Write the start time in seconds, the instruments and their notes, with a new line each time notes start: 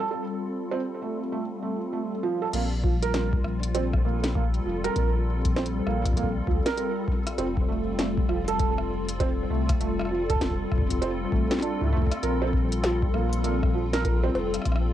Already playing: analog synth pad G3 C4 F4 A4
0.11 felt piano A4
0.71 felt piano C4
1.02 felt piano A3
1.32 felt piano A3
1.62 felt piano A3
1.93 felt piano A3
2.23 felt piano F3
2.42 felt piano A4
2.53 sub bass A#1, felt piano A#3, closed hi-hat, crash
2.84 felt piano F3, kick
2.90 analog synth pad F4
3.02 analog synth pad C4, felt piano A#4, closed hi-hat
3.14 felt piano A#4, snare, closed hi-hat
3.33 kick
3.44 sub bass A#1, cross-stick
3.63 closed hi-hat
3.67 analog synth pad A4
3.74 felt piano C4, closed hi-hat
3.93 kick, cross-stick
4.05 felt piano A#3
4.24 snare, closed hi-hat
4.35 felt piano A#3, kick
4.54 closed hi-hat
4.65 sub bass F1, felt piano F3
4.84 felt piano A#4, cross-stick, closed hi-hat
4.96 sub bass A#1, felt piano A#4, kick, closed hi-hat
5.45 kick, closed hi-hat
5.56 felt piano C4, snare
5.66 closed hi-hat
5.87 sub bass A#1, felt piano A#3, cross-stick
6.06 kick, closed hi-hat
6.13 felt piano A#3, kick, closed hi-hat
6.23 kick
6.47 sub bass D2, felt piano F3, kick
6.66 felt piano A#4, snare, closed hi-hat
6.78 felt piano A#4, closed hi-hat
7.08 kick
7.27 cross-stick, closed hi-hat
7.38 sub bass F1, felt piano C4, closed hi-hat
7.57 kick
7.68 felt piano A3
7.99 felt piano A3, snare, closed hi-hat
8.18 kick
8.29 sub bass F1, felt piano F3, cross-stick
8.48 felt piano A4, closed hi-hat
8.59 felt piano A4, kick, closed hi-hat
8.78 cross-stick
9.09 closed hi-hat
9.20 felt piano C4, kick, closed hi-hat
9.50 sub bass C2, felt piano A3
9.69 kick, cross-stick, closed hi-hat
9.80 sub bass F1, felt piano A3, closed hi-hat
9.99 cross-stick
10.01 cross-stick
10.05 cross-stick
10.07 cross-stick
10.09 felt piano F3, cross-stick
10.30 felt piano A4, kick, closed hi-hat
10.36 kick
10.41 kick, snare, closed hi-hat
10.51 kick
10.72 sub bass F1, kick, cross-stick
10.78 kick
10.82 kick
10.90 kick, closed hi-hat
10.98 felt piano C4, kick, closed hi-hat
11.32 sub bass A1, felt piano A3, kick
11.51 snare, closed hi-hat
11.59 felt piano D4, snare, closed hi-hat
11.81 felt piano A2, kick
11.84 kick
11.87 kick
11.90 felt piano A3, kick
11.93 kick
11.98 kick
12.02 kick
12.07 kick
12.12 cross-stick, closed hi-hat
12.23 sub bass A#1, felt piano A#4, closed hi-hat
12.42 felt piano C4
12.53 kick
12.72 closed hi-hat
12.84 snare, closed hi-hat
13.02 kick
13.14 sub bass A#1, felt piano A#3, cross-stick
13.33 closed hi-hat
13.44 felt piano A#3, closed hi-hat
13.63 kick, cross-stick
13.74 felt piano F3
13.93 felt piano A#4, snare, closed hi-hat
14.05 felt piano A#4, kick, closed hi-hat
14.24 felt piano C4
14.35 sub bass F1, cowbell
14.54 cross-stick, closed hi-hat
14.62 sub bass A#1, kick, cross-stick
14.65 cross-stick, closed hi-hat
14.72 cross-stick
14.76 cross-stick